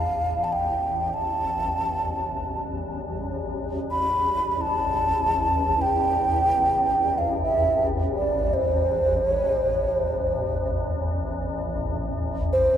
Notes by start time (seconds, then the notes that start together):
Already playing: A1 E2 F5
0.44 A5
0.53 G5
1.14 A5
1.79 A1 E2
3.91 B5
4.52 B5
4.61 A5
5.82 G5
7.18 F5
7.43 E5
8.17 D5
8.54 C5
9.30 C#5
9.51 C5
9.73 C#5
9.94 C5
12.53 C5